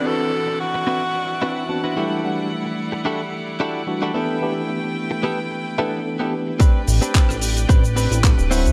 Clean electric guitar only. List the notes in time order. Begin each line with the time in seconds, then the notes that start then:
Already playing: C4 D4 E4 F#4 B4
0.47 muted clean electric guitar stroke
0.74 muted clean electric guitar stroke
0.87 C4 D4 E4 F#4 B4
1.14 muted clean electric guitar stroke
1.42 C4 D4 E4 F#4 B4 D5
1.56 E5
1.69 A5
1.84 C4 D4 E4 F#4 B4
1.96 D4 E4 F#4 G4 A4
2.65 muted clean electric guitar stroke
2.92 muted clean electric guitar stroke
3.05 D4 E4 F#4 G4 A4
3.33 muted clean electric guitar stroke
3.60 D4 E4 F#4 G4 A4
4.02 D4 E4 F#4 G4 A4
4.14 B3 E4 G4 A4
4.84 muted clean electric guitar stroke
5.11 muted clean electric guitar stroke
5.23 B3 E4 G4 A4
5.51 muted clean electric guitar stroke
5.78 B3 E4 G4 A4
6.19 B3 E4 G4 A4
6.47 muted clean electric guitar stroke
6.59 C4 D4 G4 B4
7.01 C4 D4 G4 B4
7.69 C4 D4 G4 B4
7.96 C4 D4 G4 B4
8.38 muted clean electric guitar stroke
8.51 C4 E4 F#4 B4